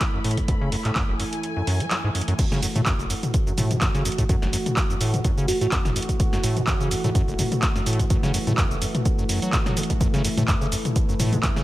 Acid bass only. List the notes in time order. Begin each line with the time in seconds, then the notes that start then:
0.14 F#2
0.24 A2
0.37 G#2
0.48 F#2
0.61 C#3
0.72 F#2
0.85 A2
0.96 F#2
1.09 F#1
1.20 F#2
1.57 F#2
1.67 F#2
1.80 F#3
1.91 F#3
2.04 G#2
2.15 F#2
2.28 F#2
2.39 F#2
2.52 C#3
2.63 F#2
2.75 A2
2.86 F#2
2.99 F#1
3.10 F#2
3.47 F#2
3.58 A2
3.71 G#2
3.82 F#2
3.94 C#3
4.05 F#2
4.18 A2
4.29 F#2
4.42 F#1
4.53 F#2
4.90 F#2
5.01 A2
5.14 G#2
5.24 F#2
5.38 C#3
5.48 F#2
5.61 A2
5.72 F#2
5.85 F#1
5.96 F#2
6.33 F#2
6.44 A2
6.57 G#2
6.67 F#2
6.80 C#3
6.91 F#2
7.04 A2
7.15 F#2
7.28 F#1
7.39 F#2
7.76 F#2
7.86 A2
7.99 G#2
8.10 F#2
8.23 C#3
8.34 F#2
8.47 A2
8.58 F#2
8.71 F#1
8.82 F#2
9.18 F#2
9.29 F#2
9.42 F#3
9.53 A2
9.66 F#3
9.77 C#3
9.90 B2
10.01 F#2
10.14 C#3
10.24 F#2
10.37 A2
10.48 F#2
10.61 C#3
10.72 F#2
11.09 F#2
11.20 A2
11.33 G#2
11.44 F#2
11.56 C#3